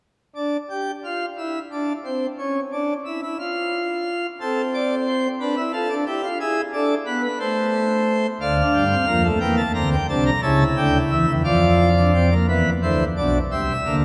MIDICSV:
0, 0, Header, 1, 2, 480
1, 0, Start_track
1, 0, Tempo, 677201
1, 252, Time_signature, 6, 3, 24, 8
1, 3126, Tempo, 667408
1, 6966, Tempo, 684151
1, 9982, End_track
2, 0, Start_track
2, 0, Title_t, "Pipe organ"
2, 0, Program_c, 0, 19
2, 253, Note_on_c, 0, 62, 67
2, 404, Note_off_c, 0, 62, 0
2, 497, Note_on_c, 0, 67, 69
2, 647, Note_off_c, 0, 67, 0
2, 740, Note_on_c, 0, 65, 64
2, 888, Note_off_c, 0, 65, 0
2, 978, Note_on_c, 0, 64, 68
2, 1126, Note_off_c, 0, 64, 0
2, 1219, Note_on_c, 0, 62, 71
2, 1366, Note_off_c, 0, 62, 0
2, 1454, Note_on_c, 0, 60, 69
2, 1603, Note_off_c, 0, 60, 0
2, 1693, Note_on_c, 0, 61, 74
2, 1842, Note_off_c, 0, 61, 0
2, 1932, Note_on_c, 0, 62, 69
2, 2080, Note_off_c, 0, 62, 0
2, 2164, Note_on_c, 0, 64, 76
2, 2270, Note_off_c, 0, 64, 0
2, 2286, Note_on_c, 0, 64, 69
2, 2391, Note_off_c, 0, 64, 0
2, 2403, Note_on_c, 0, 65, 78
2, 3022, Note_off_c, 0, 65, 0
2, 3124, Note_on_c, 0, 60, 63
2, 3125, Note_on_c, 0, 69, 76
2, 3275, Note_off_c, 0, 69, 0
2, 3364, Note_on_c, 0, 74, 77
2, 3514, Note_off_c, 0, 74, 0
2, 3605, Note_on_c, 0, 72, 75
2, 3745, Note_off_c, 0, 60, 0
2, 3754, Note_off_c, 0, 72, 0
2, 3840, Note_on_c, 0, 62, 69
2, 3842, Note_on_c, 0, 71, 82
2, 3946, Note_off_c, 0, 62, 0
2, 3960, Note_on_c, 0, 64, 59
2, 3992, Note_off_c, 0, 71, 0
2, 4066, Note_off_c, 0, 64, 0
2, 4075, Note_on_c, 0, 65, 69
2, 4078, Note_on_c, 0, 69, 74
2, 4183, Note_off_c, 0, 65, 0
2, 4194, Note_on_c, 0, 62, 63
2, 4229, Note_off_c, 0, 69, 0
2, 4302, Note_off_c, 0, 62, 0
2, 4315, Note_on_c, 0, 64, 62
2, 4317, Note_on_c, 0, 67, 78
2, 4422, Note_off_c, 0, 64, 0
2, 4436, Note_on_c, 0, 65, 65
2, 4467, Note_off_c, 0, 67, 0
2, 4542, Note_off_c, 0, 65, 0
2, 4559, Note_on_c, 0, 64, 74
2, 4559, Note_on_c, 0, 68, 83
2, 4709, Note_off_c, 0, 64, 0
2, 4709, Note_off_c, 0, 68, 0
2, 4797, Note_on_c, 0, 62, 71
2, 4798, Note_on_c, 0, 69, 82
2, 4948, Note_off_c, 0, 62, 0
2, 4949, Note_off_c, 0, 69, 0
2, 5032, Note_on_c, 0, 71, 78
2, 5035, Note_on_c, 0, 59, 65
2, 5141, Note_off_c, 0, 71, 0
2, 5160, Note_on_c, 0, 71, 81
2, 5187, Note_off_c, 0, 59, 0
2, 5265, Note_off_c, 0, 71, 0
2, 5275, Note_on_c, 0, 72, 79
2, 5276, Note_on_c, 0, 57, 70
2, 5900, Note_off_c, 0, 57, 0
2, 5900, Note_off_c, 0, 72, 0
2, 6002, Note_on_c, 0, 38, 87
2, 6002, Note_on_c, 0, 62, 72
2, 6002, Note_on_c, 0, 77, 72
2, 6003, Note_on_c, 0, 50, 92
2, 6152, Note_off_c, 0, 38, 0
2, 6153, Note_off_c, 0, 50, 0
2, 6238, Note_on_c, 0, 55, 90
2, 6239, Note_on_c, 0, 43, 89
2, 6313, Note_off_c, 0, 62, 0
2, 6359, Note_on_c, 0, 60, 75
2, 6389, Note_off_c, 0, 43, 0
2, 6389, Note_off_c, 0, 55, 0
2, 6464, Note_off_c, 0, 60, 0
2, 6478, Note_on_c, 0, 41, 88
2, 6478, Note_on_c, 0, 53, 86
2, 6479, Note_on_c, 0, 58, 71
2, 6584, Note_off_c, 0, 58, 0
2, 6601, Note_on_c, 0, 57, 65
2, 6622, Note_off_c, 0, 77, 0
2, 6628, Note_off_c, 0, 41, 0
2, 6628, Note_off_c, 0, 53, 0
2, 6705, Note_off_c, 0, 57, 0
2, 6715, Note_on_c, 0, 58, 69
2, 6716, Note_on_c, 0, 40, 91
2, 6716, Note_on_c, 0, 52, 89
2, 6717, Note_on_c, 0, 79, 73
2, 6823, Note_off_c, 0, 79, 0
2, 6837, Note_on_c, 0, 81, 63
2, 6868, Note_off_c, 0, 40, 0
2, 6868, Note_off_c, 0, 52, 0
2, 6868, Note_off_c, 0, 58, 0
2, 6944, Note_off_c, 0, 81, 0
2, 6962, Note_on_c, 0, 50, 86
2, 6962, Note_on_c, 0, 60, 71
2, 6962, Note_on_c, 0, 82, 78
2, 6964, Note_on_c, 0, 38, 83
2, 7066, Note_off_c, 0, 82, 0
2, 7085, Note_on_c, 0, 79, 66
2, 7111, Note_off_c, 0, 50, 0
2, 7111, Note_off_c, 0, 60, 0
2, 7112, Note_off_c, 0, 38, 0
2, 7187, Note_off_c, 0, 79, 0
2, 7204, Note_on_c, 0, 36, 79
2, 7204, Note_on_c, 0, 62, 64
2, 7204, Note_on_c, 0, 81, 70
2, 7205, Note_on_c, 0, 48, 82
2, 7307, Note_off_c, 0, 81, 0
2, 7326, Note_on_c, 0, 82, 65
2, 7352, Note_off_c, 0, 36, 0
2, 7352, Note_off_c, 0, 62, 0
2, 7353, Note_off_c, 0, 48, 0
2, 7427, Note_off_c, 0, 82, 0
2, 7437, Note_on_c, 0, 37, 89
2, 7438, Note_on_c, 0, 49, 93
2, 7439, Note_on_c, 0, 81, 78
2, 7440, Note_on_c, 0, 64, 76
2, 7587, Note_off_c, 0, 37, 0
2, 7588, Note_off_c, 0, 49, 0
2, 7588, Note_off_c, 0, 81, 0
2, 7678, Note_on_c, 0, 38, 80
2, 7679, Note_on_c, 0, 50, 80
2, 7679, Note_on_c, 0, 79, 66
2, 7827, Note_off_c, 0, 38, 0
2, 7828, Note_off_c, 0, 50, 0
2, 7828, Note_off_c, 0, 79, 0
2, 7920, Note_on_c, 0, 76, 66
2, 7921, Note_on_c, 0, 52, 88
2, 7922, Note_on_c, 0, 40, 83
2, 8022, Note_off_c, 0, 52, 0
2, 8024, Note_off_c, 0, 40, 0
2, 8036, Note_on_c, 0, 52, 74
2, 8038, Note_on_c, 0, 40, 76
2, 8058, Note_off_c, 0, 64, 0
2, 8069, Note_off_c, 0, 76, 0
2, 8141, Note_off_c, 0, 52, 0
2, 8142, Note_off_c, 0, 40, 0
2, 8155, Note_on_c, 0, 41, 78
2, 8155, Note_on_c, 0, 53, 85
2, 8155, Note_on_c, 0, 65, 75
2, 8156, Note_on_c, 0, 74, 65
2, 8469, Note_off_c, 0, 65, 0
2, 8523, Note_on_c, 0, 62, 60
2, 8627, Note_off_c, 0, 62, 0
2, 8645, Note_on_c, 0, 60, 66
2, 8749, Note_off_c, 0, 60, 0
2, 8766, Note_on_c, 0, 58, 62
2, 8781, Note_off_c, 0, 41, 0
2, 8781, Note_off_c, 0, 53, 0
2, 8782, Note_off_c, 0, 74, 0
2, 8869, Note_off_c, 0, 58, 0
2, 8886, Note_on_c, 0, 52, 63
2, 8886, Note_on_c, 0, 71, 63
2, 8888, Note_on_c, 0, 40, 63
2, 8888, Note_on_c, 0, 59, 69
2, 9035, Note_off_c, 0, 52, 0
2, 9035, Note_off_c, 0, 71, 0
2, 9036, Note_off_c, 0, 40, 0
2, 9036, Note_off_c, 0, 59, 0
2, 9127, Note_on_c, 0, 50, 62
2, 9127, Note_on_c, 0, 64, 67
2, 9127, Note_on_c, 0, 72, 61
2, 9128, Note_on_c, 0, 38, 63
2, 9275, Note_off_c, 0, 50, 0
2, 9275, Note_off_c, 0, 64, 0
2, 9275, Note_off_c, 0, 72, 0
2, 9276, Note_off_c, 0, 38, 0
2, 9364, Note_on_c, 0, 74, 61
2, 9366, Note_on_c, 0, 35, 58
2, 9366, Note_on_c, 0, 62, 69
2, 9368, Note_on_c, 0, 47, 61
2, 9513, Note_off_c, 0, 74, 0
2, 9515, Note_off_c, 0, 35, 0
2, 9515, Note_off_c, 0, 62, 0
2, 9516, Note_off_c, 0, 47, 0
2, 9607, Note_on_c, 0, 36, 62
2, 9607, Note_on_c, 0, 60, 69
2, 9607, Note_on_c, 0, 76, 64
2, 9608, Note_on_c, 0, 48, 61
2, 9755, Note_off_c, 0, 60, 0
2, 9756, Note_off_c, 0, 36, 0
2, 9756, Note_off_c, 0, 48, 0
2, 9846, Note_on_c, 0, 50, 68
2, 9847, Note_on_c, 0, 58, 68
2, 9849, Note_on_c, 0, 38, 65
2, 9916, Note_off_c, 0, 76, 0
2, 9982, Note_off_c, 0, 38, 0
2, 9982, Note_off_c, 0, 50, 0
2, 9982, Note_off_c, 0, 58, 0
2, 9982, End_track
0, 0, End_of_file